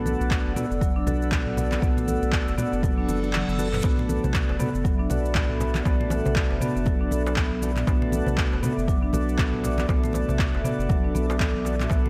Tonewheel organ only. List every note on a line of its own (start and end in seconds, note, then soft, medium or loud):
0.00 0.54 B3 medium
0.00 0.54 D4 medium
0.00 0.54 F#4 medium
0.00 0.54 A4 loud
0.56 0.66 B3 medium
0.56 0.66 D4 medium
0.56 0.66 F#4 medium
0.56 0.66 A4 loud
1.07 1.80 B3 medium
1.07 1.80 D4 medium
1.07 1.80 F#4 medium
1.07 1.80 A4 medium
1.82 2.56 B3 medium
1.82 2.56 D4 medium
1.82 2.55 F#4 medium
1.82 2.55 A4 medium
2.58 3.20 B3 medium
2.58 3.20 D4 medium
2.58 3.20 F#4 medium
2.58 3.20 A4 medium
3.23 3.30 B3 medium
3.23 3.30 D4 medium
3.23 3.30 F#4 medium
3.23 3.30 A4 medium
3.59 3.69 B3 medium
3.59 3.69 D4 medium
3.59 3.69 F#4 medium
3.59 3.69 A4 medium
3.84 4.57 B3 medium
3.84 4.57 D4 medium
3.84 4.57 F#4 medium
3.84 4.57 A4 loud
4.60 4.70 B3 medium
4.60 4.70 D4 medium
4.60 4.70 F#4 medium
4.60 4.70 A4 loud
5.10 5.83 B3 medium
5.10 5.83 D4 medium
5.10 5.83 F#4 medium
5.10 5.83 A4 medium
5.85 6.59 B3 medium
5.85 6.59 D4 medium
5.85 6.59 F#4 medium
5.85 6.59 A4 medium
6.61 7.23 B3 medium
6.61 7.23 D4 medium
6.61 7.23 F#4 medium
6.61 7.23 A4 medium
7.26 7.33 B3 medium
7.26 7.33 D4 medium
7.26 7.33 F#4 medium
7.26 7.33 A4 medium
7.62 7.72 B3 medium
7.62 7.72 D4 medium
7.62 7.72 F#4 medium
7.62 7.72 A4 medium
7.87 8.60 B3 medium
7.87 8.61 D4 medium
7.87 8.61 F#4 medium
7.87 8.61 A4 loud
8.63 8.73 B3 medium
8.63 8.73 D4 medium
8.63 8.73 F#4 medium
8.63 8.73 A4 loud
9.14 9.87 B3 medium
9.14 9.87 D4 medium
9.14 9.87 F#4 medium
9.14 9.87 A4 medium
9.89 10.62 B3 medium
9.89 10.62 D4 medium
9.89 10.62 F#4 medium
9.89 10.62 A4 medium
10.65 11.26 B3 medium
10.65 11.26 D4 medium
10.65 11.26 F#4 medium
10.65 11.26 A4 medium
11.30 11.37 B3 medium
11.30 11.37 D4 medium
11.30 11.37 F#4 medium
11.30 11.37 A4 medium
11.65 11.75 B3 medium
11.65 11.75 D4 medium
11.65 11.75 F#4 medium
11.65 11.75 A4 medium
11.91 12.10 B3 medium
11.91 12.10 D4 medium
11.91 12.10 F#4 medium
11.91 12.10 A4 loud